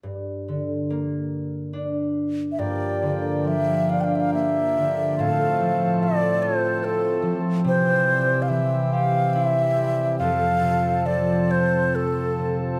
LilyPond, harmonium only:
<<
  \new Staff \with { instrumentName = "Harmonium" } { \time 3/4 \key g \dorian \tempo 4 = 70 r2. | g'2. | <a, a'>2. | g'2. |
a'2. | }
  \new Staff \with { instrumentName = "Harmonium" } { \clef bass \time 3/4 \key g \dorian << { r2. | bes2. | c'2.~ | c'2.~ |
c'2. | } \\ { r2. | f2.~ | f2. | e2. |
f2. | } >> }
>>